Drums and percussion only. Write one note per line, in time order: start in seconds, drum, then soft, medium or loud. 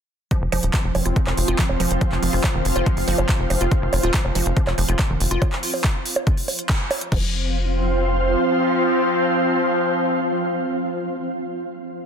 0.31 kick loud
0.31 closed hi-hat medium
0.52 open hi-hat loud
0.52 high bongo soft
0.63 closed hi-hat medium
0.74 kick loud
0.74 clap loud
0.74 closed hi-hat medium
0.95 open hi-hat loud
0.95 high bongo medium
1.06 closed hi-hat medium
1.16 kick loud
1.16 closed hi-hat medium
1.27 clap soft
1.27 high bongo soft
1.37 open hi-hat loud
1.48 closed hi-hat medium
1.59 kick loud
1.59 clap loud
1.59 closed hi-hat medium
1.69 high bongo medium
1.80 open hi-hat loud
1.91 closed hi-hat medium
2.01 kick loud
2.01 closed hi-hat medium
2.01 high bongo soft
2.12 clap soft
2.23 open hi-hat loud
2.33 open hi-hat medium
2.44 kick loud
2.44 clap loud
2.44 high bongo medium
2.65 open hi-hat loud
2.76 closed hi-hat medium
2.76 high bongo soft
2.86 kick loud
2.86 closed hi-hat medium
2.97 open hi-hat medium
3.08 open hi-hat loud
3.18 closed hi-hat medium
3.18 high bongo medium
3.29 kick loud
3.29 clap loud
3.29 closed hi-hat medium
3.50 open hi-hat loud
3.50 high bongo soft
3.61 closed hi-hat medium
3.71 kick loud
3.71 closed hi-hat medium
3.93 open hi-hat loud
3.93 high bongo medium
4.03 closed hi-hat medium
4.14 kick loud
4.14 clap loud
4.14 closed hi-hat medium
4.25 high bongo soft
4.35 open hi-hat loud
4.46 closed hi-hat medium
4.57 kick loud
4.57 closed hi-hat medium
4.67 clap soft
4.67 high bongo medium
4.78 open hi-hat loud
4.89 closed hi-hat medium
4.99 kick loud
4.99 clap loud
4.99 closed hi-hat medium
4.99 high bongo soft
5.20 open hi-hat loud
5.31 closed hi-hat medium
5.42 kick loud
5.42 closed hi-hat medium
5.42 high bongo medium
5.52 clap soft
5.63 open hi-hat loud
5.74 open hi-hat medium
5.74 high bongo soft
5.84 kick loud
5.84 clap loud
5.84 closed hi-hat medium
6.06 open hi-hat loud
6.16 closed hi-hat medium
6.16 high bongo medium
6.27 kick loud
6.27 closed hi-hat medium
6.37 open hi-hat medium
6.48 open hi-hat loud
6.48 high bongo soft
6.59 closed hi-hat medium
6.69 kick loud
6.69 clap loud
6.69 closed hi-hat medium
6.91 open hi-hat loud
6.91 high bongo medium
7.01 closed hi-hat medium
7.12 kick loud
7.12 crash medium